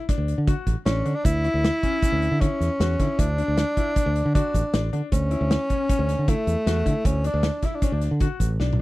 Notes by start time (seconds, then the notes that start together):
0.09 D4, kick, snare, closed hi-hat
0.18 D2
0.28 closed hi-hat
0.38 D3
0.47 F#4, kick, closed hi-hat
0.67 A1, kick, closed hi-hat
0.86 A1 C#4 D4, snare, closed hi-hat
1.05 D3 D4, closed hi-hat
1.15 D4
1.25 D2 E4, kick, closed hi-hat, shaker
1.44 E4, closed hi-hat
1.54 D2
1.64 snare, closed hi-hat
1.83 C#4, kick, closed hi-hat
2.02 C#4, kick, closed hi-hat, shaker
2.12 D2
2.22 closed hi-hat
2.31 D3
2.41 C#4 E4, kick, closed hi-hat
2.60 E2, snare, closed hi-hat, shaker
2.80 E2 F#4, snare, closed hi-hat, shaker
2.99 D3 E4, kick, snare, closed hi-hat
3.19 D2 D4, kick, closed hi-hat, shaker
3.38 D4, closed hi-hat
3.48 D2
3.57 snare, closed hi-hat
3.77 E4, kick, closed hi-hat
3.96 D4, kick, closed hi-hat, shaker
4.06 D2
4.16 closed hi-hat
4.26 D3
4.35 D4 F#4, kick, closed hi-hat
4.54 A1, kick, closed hi-hat, shaker
4.74 A1 D4, snare, closed hi-hat, shaker
4.93 D3 D4, closed hi-hat
5.12 D2 C#4, kick, closed hi-hat, shaker
5.31 E4, closed hi-hat
5.41 D2
5.51 snare, closed hi-hat
5.70 C#4, kick, closed hi-hat
5.89 C#4, kick, closed hi-hat, shaker
5.99 D2
6.09 snare, closed hi-hat
6.19 D3
6.28 A3 E4, kick, closed hi-hat
6.47 E2, closed hi-hat, shaker
6.66 E2 F#4, snare, closed hi-hat, shaker
6.86 D3 E4, kick, closed hi-hat
7.05 D2 C#4, kick, closed hi-hat, shaker
7.24 D4, closed hi-hat, shaker
7.34 D2
7.43 snare, closed hi-hat
7.63 E4, kick, snare, closed hi-hat
7.75 D4
7.82 C#4 D4, kick, closed hi-hat, shaker
7.92 D2 D4
8.02 snare, closed hi-hat
8.11 D3
8.20 F#4, kick, closed hi-hat
8.40 A1, kick, closed hi-hat, shaker
8.60 B1 D4, snare
8.73 mid tom